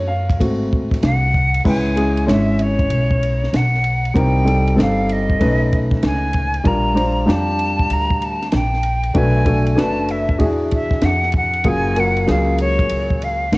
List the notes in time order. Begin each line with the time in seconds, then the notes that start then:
Already playing: F#2 A3 C#4 F#4 C#5
0.07 F5
0.29 kick, ride
0.39 G#1 A3 C4 F#4, kick, ride
0.73 kick
0.91 kick, snare, ride
1.03 C2 F#5, snare, hi-hat pedal, ride
1.34 kick
1.54 ride
1.64 C#2 G#3 C#4 E4 B4 G#5, kick, crash
1.96 G#3 C#4 E4 G#4, ride
2.17 ride
2.26 G#1 G#3 C#4 E4 C#5, snare, hi-hat pedal, ride
2.31 E5
2.59 C#5, ride
2.79 kick, ride
2.90 B1, ride
3.11 kick
3.23 ride
3.44 snare
3.53 B1 F#5, snare, hi-hat pedal, ride
3.75 snare
3.84 ride
4.05 ride
4.14 C2 G3 C4 D#4 A#4, kick, ride
4.18 G5
4.44 G3 C4 D#4 A4, ride
4.68 ride
4.75 G1 G3 C4 D#4 A4, snare
4.80 F5, hi-hat pedal, ride
5.09 D#5, ride
5.30 kick
5.39 B1 A3 C#4 D#4 B4, kick, ride
5.72 kick, ride
5.91 kick, snare
6.03 C#2 G#5, snare, hi-hat pedal, ride
6.33 kick, ride
6.54 ride
6.64 A#1 G3 D4 F4 A#4 A#5, kick, ride
6.94 G3 D4 F4 C5, ride
7.25 F2 G3 D4 F4 G4, snare
7.30 A5, hi-hat pedal, ride
7.59 ride
7.79 kick
7.90 D2 A#5, ride
8.11 kick
8.22 A5, ride
8.42 snare, ride
8.52 A#1 G5, snare, hi-hat pedal, ride
8.73 snare
8.83 ride
9.03 ride
9.14 B1 A3 D4 F#4 B4 G#5, kick, ride
9.45 A3 D4 F#4 A4, kick, ride
9.66 ride
9.75 F#1 A3 D4 F#4 B4 G#5, snare, hi-hat pedal, ride
9.80 A5
10.09 E5, ride
10.29 kick
10.38 E2 D4 E4 F#4 G#4, kick, ride
10.71 E5, kick, ride
10.91 kick, snare
11.01 F2 F#5, snare, hi-hat pedal, ride
11.23 snare
11.32 kick, ride
11.37 F#5
11.53 ride
11.64 F#1 F#3 A#3 F4 G#4, kick, ride
11.68 G#5
11.95 F#3 A#3 F4 A#4, ride
12.00 F#5
12.17 ride
12.26 C#2 F#3 A#3 F4 G#4, snare, hi-hat pedal, ride
12.30 F5
12.58 C#5, ride
12.79 kick, ride
12.89 C#2, ride
13.10 kick
13.22 F5, ride
13.52 D2 F#5, snare, hi-hat pedal, ride